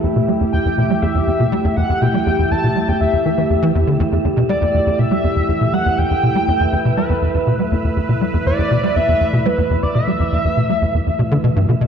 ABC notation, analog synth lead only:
X:1
M:4/4
L:1/16
Q:1/4=121
K:Em
V:1 name="Analog synth lead"
z4 g4 e6 f2 | g4 a3 g e6 z2 | z4 d4 e6 f2 | g8 B6 z2 |
z4 d4 e4 B3 d | e12 z4 |]